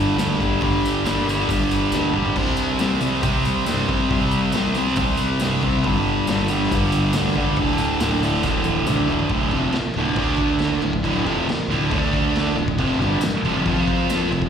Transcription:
Already playing: G1 G2 D3 G3
0.17 D2 G2 D3 G3, snare, open hi-hat, tambourine
0.39 G1 G2 D3 G3, kick, tambourine
0.61 G1 G2 D3 G3, kick, open hi-hat
0.85 tambourine
1.05 G1 G2 D3 G3, snare, open hi-hat, tambourine
1.28 G2 D3 G3, tambourine
1.40 snare
1.49 G1 G2 D3 G3, kick, open hi-hat, tambourine
1.71 G1, tambourine
1.92 D2 G2 D3 G3, snare, tambourine
2.13 G1 G2 D3 G3, mid tom
2.25 floor tom
2.36 C2 C3 G3 C4, kick, open hi-hat, crash
2.57 tambourine
2.79 C2 C3 G3 C4, snare, open hi-hat, tambourine
2.92 snare
3.01 C3 G3 C4, tambourine
3.14 snare
3.22 C2 C3 G3 C4, kick, open hi-hat, tambourine
3.45 C2, tambourine
3.66 C3 G3 C4, snare, open hi-hat, tambourine
3.70 G2
3.88 C2 C3 G3 C4, kick, tambourine
4.10 C2 C3 G3 C4, kick, open hi-hat
4.31 tambourine
4.52 C2 C3 G3 C4, snare, open hi-hat, tambourine
4.75 C3 G3 C4, tambourine
4.88 snare
4.96 C2 C3 G3, kick, open hi-hat, tambourine
5.00 C4
5.17 C2, tambourine
5.39 G2 C3 G3 C4, snare, open hi-hat, tambourine
5.62 C2 C3 G3 C4, kick, tambourine
5.83 G1 G2 D3 G3, kick, open hi-hat
6.27 G1 G2 D3 G3, snare, open hi-hat, tambourine
6.48 G2 D3 G3, tambourine
6.63 snare
6.71 G1 G2 D3 G3, kick, open hi-hat, tambourine
6.92 G1, tambourine
7.12 D2 G2, snare, open hi-hat, tambourine
7.18 D3 G3
7.35 C#2 G2 D3 G3, kick, tambourine
7.56 D1, kick, open hi-hat, tambourine
7.60 D2 A2 D3
7.78 tambourine
8.00 D1 D2 A2 D3, snare, open hi-hat, tambourine
8.22 D2 A2 D3, tambourine
8.34 snare
8.43 D1 D2 A2 D3, kick, snare, tambourine
8.64 D1, high tom, tambourine
8.87 A1 D2 A2 D3, mid tom, tambourine
8.97 mid tom
9.07 D1 D2 A2 D3, floor tom, tambourine
9.19 floor tom
9.29 D1 D2 A2 D3, kick, crash
9.51 F1 F2 C3 F3, crash
9.72 muted fingered electric bass stroke, muted distorted electric guitar stroke, snare, crash
9.93 D1 D2, crash
9.98 A2 D3
10.16 D2 D3 A3 D4, kick, crash
10.36 kick, crash
10.59 snare, crash
10.82 D1 D2 A2, crash
10.93 kick
11.04 D1 D2 A2 D3, kick, crash
11.25 F1 F2 C3 F3, crash
11.47 muted distorted electric guitar stroke, muted fingered electric bass stroke, snare, crash
11.68 D1 D2 A2 D3, crash
11.90 D2 D3 A3 D4, kick, crash
12.13 kick, crash
12.36 snare, crash
12.55 D1 D2 A2, crash
12.68 kick
12.78 F1 F2 C3 F3, kick, crash
12.99 G1 G2 D3 G3, crash
13.21 muted distorted electric guitar stroke, snare, tambourine, crash
13.43 F1 F2 C3 F3, crash
13.65 F2 F3 C4 F4, kick, crash
13.88 kick, crash
14.10 snare, tambourine, crash
14.31 F1 F2 C3, crash
14.42 kick

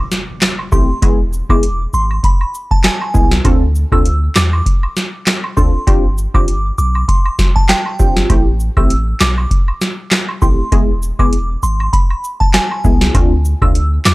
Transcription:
Already playing: impact
0.12 snare, cabasa
0.42 snare, clap, closed hi-hat
0.59 high woodblock
0.72 A1 A3 C4 E4 G4 C6, kick, cabasa
1.02 E1 G#3 B3 E4 G#4, kick, closed hi-hat, high woodblock
1.33 cabasa
1.49 E1 G#3 B3 E4 G#4 D6, kick, high woodblock
1.63 closed hi-hat
1.93 G#1 C6, cabasa
2.11 high woodblock
2.24 B5, kick, closed hi-hat
2.41 high woodblock
2.54 cabasa
2.71 A5, kick
2.84 G#5, snare, clap, closed hi-hat
3.01 high woodblock
3.14 C2 G#3 B3 E4 G#4, kick, cabasa
3.31 snare
3.44 D2 C4 D4 F4 A4, kick, closed hi-hat, high woodblock
3.75 cabasa
3.92 D2 C4 D4 F4 A4 E6, kick, high woodblock
4.05 closed hi-hat
4.35 E2 D6, snare, clap, cabasa
4.53 high woodblock
4.66 kick, closed hi-hat
4.83 high woodblock
4.97 snare, cabasa
5.27 snare, clap, closed hi-hat
5.44 high woodblock
5.57 D2 C4 D4 F4 A4 C6, kick, cabasa
5.87 G1 C4 D4 F4 G4, kick, closed hi-hat, high woodblock
6.18 cabasa
6.34 G1 C4 D4 F4 G4 D6, kick, high woodblock
6.48 closed hi-hat
6.78 B1 D6, cabasa
6.95 high woodblock
7.08 C6, kick, closed hi-hat
7.26 high woodblock
7.39 kick, snare, cabasa
7.56 A5, kick
7.69 G5, snare, clap, closed hi-hat
7.86 high woodblock
7.99 G1 C4 D4 F4 G4, kick, cabasa
8.16 snare
8.30 A1 A3 C4 E4 G4, kick, closed hi-hat, high woodblock
8.60 cabasa
8.77 A1 A3 C4 E4 G4 E6, kick, high woodblock
8.90 closed hi-hat
9.20 B1 D6, snare, clap, cabasa
9.38 high woodblock
9.51 kick, closed hi-hat
9.68 high woodblock
9.81 snare, cabasa
10.11 snare, clap, closed hi-hat
10.29 high woodblock
10.42 A1 A3 C4 E4 G4 C6, kick, cabasa
10.72 E1 G#3 B3 E4 G#4, kick, closed hi-hat, high woodblock
11.02 cabasa
11.19 E1 G#3 B3 E4 G#4 D6, kick, high woodblock
11.33 closed hi-hat
11.63 G#1 C6, cabasa
11.80 high woodblock
11.93 B5, kick, closed hi-hat
12.10 high woodblock
12.24 cabasa
12.40 A5, kick
12.54 G#5, snare, clap, closed hi-hat
12.71 high woodblock
12.84 C2 G#3 B3 E4 G#4, kick, cabasa
13.01 snare
13.14 D2 A3 C4 D4 F4, kick, closed hi-hat, high woodblock
13.45 cabasa
13.62 D2 A3 C4 D4 F4 E6, kick, high woodblock
13.75 closed hi-hat
14.05 E2 D6, snare, clap, cabasa

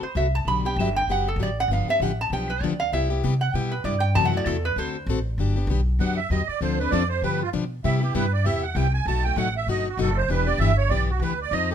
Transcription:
0.01 C5, muted upright bass stroke
0.15 C2 D3 A3 C4 F#4 A4 E5
0.35 A5
0.45 B1 D3 F#3 B3 D4 G4 B5
0.65 B3 D4 G4 G5
0.76 G1 D3 F#3 B3
0.80 D4 G4 E5
0.96 G5
1.07 F#1 D3 F#3 B3 D4 G4 F#5
1.28 A4
1.36 A1 D3 F#3 B3 D4
1.40 G4 D5
1.60 F#5
1.68 G1 D3 F3 B3 D4 G4
1.73 F5
1.87 B3 D4 G4 E5, muted upright bass stroke
2.00 A1 D3 F3 B3 D4 G4 F#5
2.21 A5
2.30 B1 D3 F3 B3 D4 G4 G5
2.50 B4
2.61 D2 D3 F3 B3 D4 G4 D5
2.80 F5
2.92 C2 C3 G3 B3 E4 G4 E5
3.10 B3 E4 G4
3.24 C3 G3 B3 E4 G4
3.41 F#5
3.54 B2 C3 G3 B3 E4 G4 G5
3.71 B4
3.84 G2 C3 G3 B3 E4 G4 D5
4.00 G5
4.15 F#2 C3 E3 A3 E4 F#4 A5
4.25 F#5
4.32 A3 E4 F#4
4.37 D5
4.45 E2 C3 E3 A3 E4 F#4 A4
4.65 B4
4.76 D2 D3 A3 C4 F#4 A4 C5
5.06 A1 D3 A3 C4 F#4 A4
5.38 G1 D3 F#3 B3 D4 G4
5.56 B3 D4 G4
5.67 B1 D3 F#3 B3 D4
5.71 G4
5.99 F#2 D3 F#3 B3 D4 G4 F#5
6.17 E5
6.30 E2 D3 F#3 B3 D4 G4 D#5
6.47 D5, muted upright bass stroke
6.61 D2 D3 F3 C4 D4 A4 C5
6.79 C4 D4 A4 B4
6.91 F2 D3 F3 C4 D4 A4 D5
7.09 C5
7.22 G2 D3 F3 B3 D4 G4 B4
7.42 F4
7.53 B2 D3 F3 B3 D4 G4
7.84 C3 G3 B3 E4 G4 E5
8.01 B3 E4 G4
8.14 G2 C3 G3 B3 E4 G4 B4
8.33 D5
8.44 E2 C3 G3 B3 E4 G4 E5
8.63 F#5
8.75 C2 C3 G3 B3 E4 G4 G5
8.93 G#5
9.06 B1 B2 F#3 A3 D#4 F#4 A5
9.24 A3 D#4 F#4 G5
9.36 A1 B2 F#3 A3 D#4 F#4 F#5
9.57 E5
9.67 G1 B2 F#3 A3 D#4 F#4 D#5
9.88 F#4
9.97 F#1 B2 F#3 A3 D#4 F#4 A4
10.17 C5
10.28 E1 E3 B3 D4 G4 B4
10.46 B3 D4 G4 D5
10.58 G1 E3 B3 D4 G4 E5
10.77 C#5
10.89 B1 E3 B3 D4 G4 D5
11.10 F#4
11.20 D2 E3 B3 D4 G4 B4
11.42 D5
11.51 F2 F3 C4 D#4 A4 D#5
11.71 G4 A4

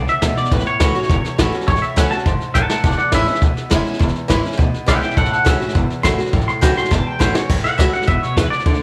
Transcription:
Already playing: C#3
0.08 E5, muted upright bass stroke, snare
0.22 D2 B2, kick, snare, hi-hat pedal
0.37 D5, muted upright bass stroke, snare
0.45 snare
0.52 A1 A2 B4, kick, snare
0.59 snare
0.66 C#5, snare
0.80 C#2 E3 A3 C#4 F#4, kick, snare, hi-hat pedal
0.95 C#4 F#4, snare
1.03 snare
1.09 F#1 E2, kick, snare
1.24 snare
1.38 A1 E3 A3 C#4 F#4, kick, snare, hi-hat pedal
1.52 C#4 F#4, muted upright bass stroke, snare
1.61 snare
1.68 A1 A2 C#5, kick, snare
1.75 snare
1.82 E5, muted upright bass stroke, snare
1.96 C#2 E3 A3 C#4 F#4 F#5, kick, snare, hi-hat pedal
2.11 C#4 F#4 A5, snare
2.19 snare
2.26 F#1 G#2, kick, snare
2.40 muted upright bass stroke, snare
2.54 A1 F#2 F#5 A5, kick, snare, hi-hat pedal
2.69 F#5 A5, snare
2.84 E1 E2 D5 F#5, kick, snare
2.91 snare
2.98 D5 F#5, snare
3.12 G#1 E3 G#3 C#4 E4 E5, kick, snare, hi-hat pedal
3.27 C#4 E4, muted upright bass stroke, snare
3.35 snare
3.42 D2 B2, kick, snare
3.56 muted upright bass stroke, snare
3.70 E1 E3 G#3 C#4 E4, kick, snare, hi-hat pedal
3.84 C#4 E4, muted upright bass stroke, snare
3.93 snare
3.99 E1 E2, kick, snare
4.08 snare
4.15 snare
4.28 G#1 E3 G#3 C#4 E4, kick, snare, hi-hat pedal
4.43 C#4 E4, snare
4.52 snare
4.57 D2 B2, kick, snare
4.74 muted upright bass stroke, snare
4.86 B1 E3 G#3 C#4 E4 E5 G5, kick, snare, hi-hat pedal
5.01 C#4 E4 E5 G5, muted upright bass stroke, snare
5.10 snare
5.17 A1 A2 A4 F#5, kick, snare
5.25 snare
5.31 A4 F#5, muted upright bass stroke, snare
5.45 C#2 E3 A3 C#4 F#4 E5, kick, snare, hi-hat pedal
5.60 C#4 F#4, muted upright bass stroke, snare
5.68 snare
5.75 F#1 E2, kick, snare
5.90 snare
6.03 A1 E3 A3 C#4 F#4 C6, kick, snare, hi-hat pedal
6.18 C#4 F#4, muted upright bass stroke, snare
6.26 snare
6.33 A1 A2, kick, snare
6.40 snare
6.48 C6, muted upright bass stroke, snare
6.61 C#2 E3 A3 C#4 F#4 G5, kick, snare, hi-hat pedal
6.75 C#4 F#4 C6, muted upright bass stroke, snare
6.84 snare
6.91 F#1 E2 A5, kick, snare
7.07 G5
7.19 A1 E3 A3 C#4 F#4 C5, kick, snare, hi-hat pedal
7.34 C#4 F#4 C#5, muted upright bass stroke, snare
7.50 A1 A2, kick, snare, crash
7.57 snare
7.64 F#5, muted upright bass stroke, snare
7.78 C#2 E3 A3 C#4 F#4 E5, kick, snare, hi-hat pedal
7.93 C#4 F#4 F#5, muted upright bass stroke, snare
8.02 snare
8.07 F#1 B2 E5, kick, snare
8.22 C#5, muted upright bass stroke, snare
8.36 E2 C#3 B4, kick, snare, hi-hat pedal
8.50 D5, snare
8.59 snare
8.66 D2 D3, kick, snare
8.74 snare

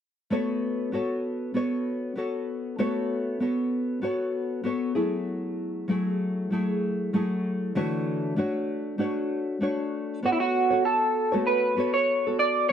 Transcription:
0.30 A3 B3 F#4 A4 C#5
0.92 B3 F#4 A4 C#5
1.54 B3 F#4 A4 C#5
2.15 B3 F#4 A4 C#5
2.78 A3 B3 F#4 A4 C#5
3.40 B3 F#4 A4 C#5
4.02 B3 F#4 A4 C#5
4.64 B3 F#4 A4 C#5
4.95 F#3 A3 E4 G#4
5.88 F#3 A3 E4 G#4
6.50 F#3 A3 E4 G#4
7.13 F#3 A3 E4 G#4
7.75 D3 E3 A3 D4 F#4 C#5
8.36 A3 D4 F#4 C#5
8.98 A3 D4 F#4 C#5
9.61 A3 D4 F#4 C#5
10.23 B3 F#4 A4 C#5
10.32 E4
10.40 F#4
10.70 F#4 A4 C#5
10.85 A4
11.32 A3 B3 F#4 A4 C#5
11.47 B4
11.76 B3 F#4 A4 C#5
11.94 C#5
12.27 F#4 A4
12.39 D5
12.69 C#5

